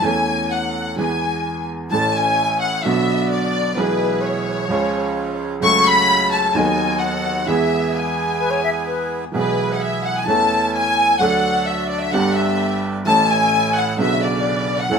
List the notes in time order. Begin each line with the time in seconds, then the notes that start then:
0.02 E2 E3 A3 C#4 A4 G#5
0.51 F#5
0.96 E2 E3 G#3 B3 G#4 G#5
1.90 A1 A2 E3 A3 C#4 E4 A4 A5
2.15 G#5
2.61 F#5
2.84 B1 B2 D3 F#3 B3 D4 F#4 E5
2.88 F#4
3.30 D5
3.76 B1 B2 E3 G#3 B3 E4 G#4 B4
4.23 C#5
4.69 C#2 C#3 F3 G#3 C#4 F4 G#4
5.60 C#2 C#3 F#3 A3 C#4 F#4 A4 C#6
5.86 B5
6.31 A5
6.54 D#2 D#3 F#3 B3 D#4 A4 G#5
6.59 A4
7.00 F#5
7.46 E2 E3 G#3 B3 E4 G#4 E5
7.94 G#5
8.40 B4
8.51 C#5
8.64 E5
8.87 B4
9.32 B1 B2 E3 G#3 B3 E4 G#4 B4
9.36 G#4
9.74 F#5
9.81 E5
10.04 F#5
10.17 G#5
10.25 E2 E3 A3 C#4 E4 A4 A5
10.30 A4
10.74 G#5
11.19 D2 D3 F#3 A3 D4 F#4 A4 F#5
11.66 E5
11.89 D5
12.01 E5
12.11 G1 G2 D3 G3 B3 D4 G4 B4 F#5
12.34 E5
13.05 A1 A2 E3 A3 C#4 E4 A4 A5
13.31 G#5
13.77 F#5
13.97 B1 B2 C#3 D3 B3 F#4 B4 E5
14.22 D5
14.80 F#5
14.89 E2 E3 A3 C#4 E4 A4